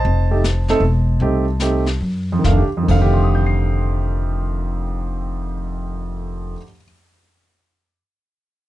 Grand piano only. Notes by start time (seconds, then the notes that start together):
Already playing: C5 D#5 A5
0.31 A3 C4 D#4 G4
0.69 A3 C4 D#4 A4
1.21 A3 C4 D#4 G4
1.61 A3 C4 D#4 G4
2.32 F2
2.39 D#3
2.45 A3 F5
2.51 D4
2.58 G4
2.77 F2
2.83 D#3
2.89 A3 C5 F5
2.95 D3 D#5
3.02 G4 G5
3.14 C6
3.24 D#6
3.35 G6
3.46 C7